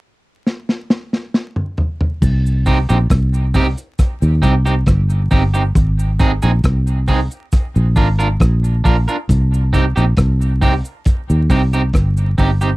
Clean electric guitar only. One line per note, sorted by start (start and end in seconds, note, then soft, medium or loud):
2.66 2.77 C4 medium
2.66 2.77 D#4 medium
2.66 2.77 G4 medium
2.89 2.97 C4 medium
2.89 2.97 D#4 medium
2.89 2.97 G4 medium
3.54 3.65 C4 medium
3.54 3.66 D#4 medium
3.54 3.66 G4 loud
4.42 4.53 C4 medium
4.42 4.53 D#4 medium
4.42 4.54 G4 medium
4.66 4.74 C4 soft
4.66 4.74 D#4 medium
4.66 4.73 G4 medium
5.31 5.42 C4 medium
5.31 5.42 D#4 medium
5.31 5.42 G4 medium
5.54 5.62 C4 medium
5.54 5.62 D#4 soft
5.54 5.62 G4 medium
6.20 6.30 C4 medium
6.20 6.30 D#4 medium
6.20 6.31 G#4 loud
6.42 6.51 C4 medium
6.42 6.51 D#4 medium
6.42 6.50 G#4 medium
7.08 7.18 C4 medium
7.08 7.19 D#4 loud
7.08 7.19 G#4 medium
7.96 8.07 D4 medium
7.96 8.07 F4 medium
7.96 8.08 A#4 medium
8.19 8.27 D4 soft
8.19 8.27 F4 medium
8.19 8.27 A#4 medium
8.84 8.95 D4 medium
8.84 8.95 F4 medium
8.84 8.96 A#4 medium
9.08 9.16 D4 soft
9.08 9.16 F4 medium
9.08 9.15 A#4 medium
9.73 9.84 C4 medium
9.73 9.84 D#4 medium
9.73 9.84 G4 medium
9.96 10.04 C4 soft
9.96 10.04 D#4 medium
9.96 10.04 G4 medium
10.61 10.72 C4 loud
10.61 10.72 D#4 medium
10.61 10.73 G4 loud
11.50 11.61 C4 medium
11.50 11.61 D#4 medium
11.50 11.61 G4 medium
11.73 11.81 C4 medium
11.73 11.81 D#4 medium
11.73 11.81 G4 medium
12.38 12.49 C4 medium
12.38 12.49 D#4 medium
12.38 12.49 G4 medium
12.61 12.70 C4 medium
12.61 12.69 D#4 soft
12.61 12.69 G4 medium